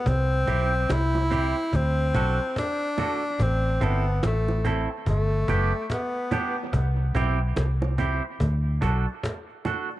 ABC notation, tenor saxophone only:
X:1
M:4/4
L:1/8
Q:"Swing 16ths" 1/4=72
K:Clyd
V:1 name="Tenor saxophone"
C2 E2 C2 D2 | C B, A, z A,2 B,2 | z8 |]